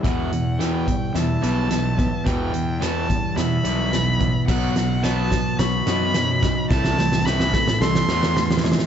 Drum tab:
CC |--------------------------------|--------------------------------|x-------------------------------|--------------------------------|
HH |x---x---x---x---x---x---x---x---|x---x---x---x---x---x---x---x---|----x---x---x---x---x---x---x---|--------------------------------|
SD |o-------o-------o-------o-------|o-------o-------o-------o-------|o---o---o---o---o---o---o---o---|o-o-o-o-o-o-o-o-o-o-o-o-o-ooooo-|
BD |o-----------o---------------o---|o-----------o---------------o---|o-----------o---------------o---|o-----------o-------------------|